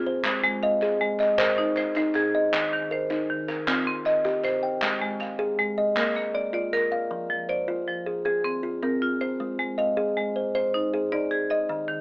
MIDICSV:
0, 0, Header, 1, 4, 480
1, 0, Start_track
1, 0, Tempo, 381679
1, 309, Time_signature, 12, 3, 24, 8
1, 15103, End_track
2, 0, Start_track
2, 0, Title_t, "Kalimba"
2, 0, Program_c, 0, 108
2, 0, Note_on_c, 0, 65, 69
2, 82, Note_on_c, 0, 72, 68
2, 316, Note_on_c, 0, 56, 85
2, 551, Note_off_c, 0, 65, 0
2, 555, Note_off_c, 0, 72, 0
2, 792, Note_off_c, 0, 56, 0
2, 794, Note_on_c, 0, 75, 69
2, 1038, Note_on_c, 0, 68, 84
2, 1492, Note_off_c, 0, 75, 0
2, 1507, Note_on_c, 0, 75, 72
2, 1512, Note_off_c, 0, 68, 0
2, 1740, Note_on_c, 0, 72, 93
2, 2210, Note_off_c, 0, 72, 0
2, 2225, Note_on_c, 0, 72, 74
2, 2226, Note_off_c, 0, 75, 0
2, 2469, Note_on_c, 0, 63, 89
2, 2709, Note_on_c, 0, 68, 68
2, 2944, Note_off_c, 0, 72, 0
2, 2946, Note_off_c, 0, 63, 0
2, 2950, Note_on_c, 0, 75, 72
2, 3186, Note_on_c, 0, 51, 89
2, 3426, Note_off_c, 0, 68, 0
2, 3427, Note_off_c, 0, 75, 0
2, 3660, Note_on_c, 0, 70, 74
2, 3664, Note_off_c, 0, 51, 0
2, 3903, Note_on_c, 0, 63, 81
2, 4365, Note_off_c, 0, 70, 0
2, 4380, Note_on_c, 0, 70, 68
2, 4382, Note_off_c, 0, 63, 0
2, 4622, Note_on_c, 0, 60, 87
2, 4861, Note_off_c, 0, 70, 0
2, 5101, Note_off_c, 0, 60, 0
2, 5104, Note_on_c, 0, 75, 67
2, 5343, Note_on_c, 0, 67, 86
2, 5584, Note_on_c, 0, 72, 65
2, 5820, Note_on_c, 0, 79, 65
2, 5821, Note_off_c, 0, 67, 0
2, 5822, Note_off_c, 0, 75, 0
2, 6065, Note_on_c, 0, 56, 90
2, 6300, Note_off_c, 0, 79, 0
2, 6302, Note_off_c, 0, 72, 0
2, 6542, Note_off_c, 0, 56, 0
2, 6777, Note_on_c, 0, 68, 87
2, 7258, Note_off_c, 0, 68, 0
2, 7265, Note_on_c, 0, 75, 67
2, 7504, Note_on_c, 0, 58, 91
2, 7742, Note_off_c, 0, 75, 0
2, 7979, Note_on_c, 0, 74, 69
2, 7982, Note_off_c, 0, 58, 0
2, 8214, Note_on_c, 0, 65, 78
2, 8463, Note_on_c, 0, 70, 60
2, 8697, Note_off_c, 0, 65, 0
2, 8699, Note_off_c, 0, 74, 0
2, 8700, Note_on_c, 0, 77, 74
2, 8939, Note_on_c, 0, 53, 76
2, 9180, Note_off_c, 0, 77, 0
2, 9182, Note_off_c, 0, 70, 0
2, 9417, Note_on_c, 0, 72, 65
2, 9420, Note_off_c, 0, 53, 0
2, 9658, Note_on_c, 0, 65, 77
2, 10140, Note_off_c, 0, 65, 0
2, 10140, Note_off_c, 0, 72, 0
2, 10141, Note_on_c, 0, 68, 66
2, 10367, Note_off_c, 0, 68, 0
2, 10382, Note_on_c, 0, 68, 86
2, 10854, Note_on_c, 0, 65, 64
2, 10863, Note_off_c, 0, 68, 0
2, 11103, Note_on_c, 0, 60, 82
2, 11579, Note_off_c, 0, 65, 0
2, 11584, Note_off_c, 0, 60, 0
2, 11584, Note_on_c, 0, 72, 66
2, 11822, Note_on_c, 0, 56, 75
2, 12065, Note_off_c, 0, 72, 0
2, 12297, Note_on_c, 0, 75, 65
2, 12304, Note_off_c, 0, 56, 0
2, 12539, Note_on_c, 0, 68, 77
2, 13022, Note_off_c, 0, 75, 0
2, 13026, Note_on_c, 0, 72, 63
2, 13251, Note_off_c, 0, 72, 0
2, 13264, Note_off_c, 0, 68, 0
2, 13266, Note_on_c, 0, 72, 82
2, 13747, Note_off_c, 0, 72, 0
2, 13753, Note_on_c, 0, 68, 69
2, 13986, Note_on_c, 0, 63, 82
2, 14468, Note_off_c, 0, 63, 0
2, 14472, Note_off_c, 0, 68, 0
2, 14472, Note_on_c, 0, 75, 69
2, 14706, Note_on_c, 0, 51, 79
2, 14951, Note_off_c, 0, 75, 0
2, 15103, Note_off_c, 0, 51, 0
2, 15103, End_track
3, 0, Start_track
3, 0, Title_t, "Marimba"
3, 0, Program_c, 1, 12
3, 0, Note_on_c, 1, 65, 84
3, 0, Note_on_c, 1, 68, 75
3, 312, Note_off_c, 1, 65, 0
3, 313, Note_off_c, 1, 68, 0
3, 548, Note_on_c, 1, 56, 91
3, 788, Note_on_c, 1, 77, 72
3, 1028, Note_off_c, 1, 56, 0
3, 1268, Note_on_c, 1, 56, 84
3, 1507, Note_off_c, 1, 77, 0
3, 1743, Note_on_c, 1, 70, 69
3, 1747, Note_off_c, 1, 56, 0
3, 1987, Note_on_c, 1, 63, 84
3, 2229, Note_on_c, 1, 72, 70
3, 2460, Note_off_c, 1, 72, 0
3, 2464, Note_off_c, 1, 70, 0
3, 2466, Note_off_c, 1, 63, 0
3, 2475, Note_on_c, 1, 72, 71
3, 2710, Note_on_c, 1, 68, 80
3, 3186, Note_off_c, 1, 68, 0
3, 3189, Note_off_c, 1, 72, 0
3, 3434, Note_on_c, 1, 51, 92
3, 3676, Note_on_c, 1, 72, 72
3, 3908, Note_off_c, 1, 51, 0
3, 4151, Note_on_c, 1, 51, 90
3, 4389, Note_off_c, 1, 72, 0
3, 4626, Note_off_c, 1, 51, 0
3, 4629, Note_on_c, 1, 65, 67
3, 4868, Note_on_c, 1, 60, 88
3, 5105, Note_off_c, 1, 65, 0
3, 5106, Note_on_c, 1, 75, 65
3, 5344, Note_off_c, 1, 60, 0
3, 5592, Note_on_c, 1, 72, 80
3, 5823, Note_off_c, 1, 75, 0
3, 6066, Note_off_c, 1, 72, 0
3, 6307, Note_on_c, 1, 56, 86
3, 6546, Note_on_c, 1, 77, 69
3, 6783, Note_off_c, 1, 56, 0
3, 7025, Note_on_c, 1, 56, 81
3, 7263, Note_off_c, 1, 77, 0
3, 7502, Note_off_c, 1, 56, 0
3, 7508, Note_on_c, 1, 70, 63
3, 7750, Note_on_c, 1, 58, 83
3, 7983, Note_off_c, 1, 70, 0
3, 7983, Note_on_c, 1, 74, 64
3, 8210, Note_off_c, 1, 74, 0
3, 8225, Note_off_c, 1, 58, 0
3, 8225, Note_on_c, 1, 74, 73
3, 8466, Note_on_c, 1, 70, 91
3, 8943, Note_off_c, 1, 70, 0
3, 8943, Note_off_c, 1, 74, 0
3, 9179, Note_on_c, 1, 53, 82
3, 9425, Note_on_c, 1, 74, 64
3, 9660, Note_off_c, 1, 53, 0
3, 9904, Note_on_c, 1, 53, 72
3, 10143, Note_off_c, 1, 74, 0
3, 10377, Note_on_c, 1, 68, 64
3, 10383, Note_off_c, 1, 53, 0
3, 10620, Note_on_c, 1, 60, 78
3, 11099, Note_on_c, 1, 70, 67
3, 11101, Note_off_c, 1, 68, 0
3, 11102, Note_off_c, 1, 60, 0
3, 11343, Note_on_c, 1, 65, 76
3, 11582, Note_on_c, 1, 72, 64
3, 11822, Note_off_c, 1, 70, 0
3, 11824, Note_off_c, 1, 65, 0
3, 12062, Note_on_c, 1, 56, 76
3, 12304, Note_off_c, 1, 72, 0
3, 12308, Note_on_c, 1, 77, 69
3, 12544, Note_off_c, 1, 56, 0
3, 12788, Note_on_c, 1, 56, 79
3, 13028, Note_off_c, 1, 77, 0
3, 13268, Note_off_c, 1, 56, 0
3, 13270, Note_on_c, 1, 72, 65
3, 13510, Note_on_c, 1, 63, 76
3, 13987, Note_on_c, 1, 74, 64
3, 13990, Note_off_c, 1, 63, 0
3, 13990, Note_off_c, 1, 72, 0
3, 14223, Note_on_c, 1, 68, 79
3, 14465, Note_on_c, 1, 75, 72
3, 14707, Note_off_c, 1, 68, 0
3, 14709, Note_off_c, 1, 74, 0
3, 14941, Note_on_c, 1, 51, 82
3, 15103, Note_off_c, 1, 51, 0
3, 15103, Note_off_c, 1, 75, 0
3, 15103, End_track
4, 0, Start_track
4, 0, Title_t, "Drums"
4, 309, Note_on_c, 9, 39, 59
4, 435, Note_off_c, 9, 39, 0
4, 1031, Note_on_c, 9, 39, 19
4, 1157, Note_off_c, 9, 39, 0
4, 1505, Note_on_c, 9, 39, 23
4, 1631, Note_off_c, 9, 39, 0
4, 1749, Note_on_c, 9, 39, 65
4, 1875, Note_off_c, 9, 39, 0
4, 2223, Note_on_c, 9, 39, 22
4, 2348, Note_off_c, 9, 39, 0
4, 2462, Note_on_c, 9, 39, 21
4, 2588, Note_off_c, 9, 39, 0
4, 2703, Note_on_c, 9, 39, 21
4, 2828, Note_off_c, 9, 39, 0
4, 3191, Note_on_c, 9, 39, 68
4, 3317, Note_off_c, 9, 39, 0
4, 3910, Note_on_c, 9, 39, 20
4, 4036, Note_off_c, 9, 39, 0
4, 4394, Note_on_c, 9, 39, 22
4, 4519, Note_off_c, 9, 39, 0
4, 4629, Note_on_c, 9, 39, 68
4, 4754, Note_off_c, 9, 39, 0
4, 5108, Note_on_c, 9, 39, 20
4, 5234, Note_off_c, 9, 39, 0
4, 5350, Note_on_c, 9, 39, 18
4, 5476, Note_off_c, 9, 39, 0
4, 5588, Note_on_c, 9, 39, 20
4, 5714, Note_off_c, 9, 39, 0
4, 6062, Note_on_c, 9, 39, 61
4, 6188, Note_off_c, 9, 39, 0
4, 6549, Note_on_c, 9, 39, 19
4, 6675, Note_off_c, 9, 39, 0
4, 7503, Note_on_c, 9, 39, 59
4, 7629, Note_off_c, 9, 39, 0
4, 7744, Note_on_c, 9, 39, 17
4, 7869, Note_off_c, 9, 39, 0
4, 8474, Note_on_c, 9, 39, 19
4, 8600, Note_off_c, 9, 39, 0
4, 15103, End_track
0, 0, End_of_file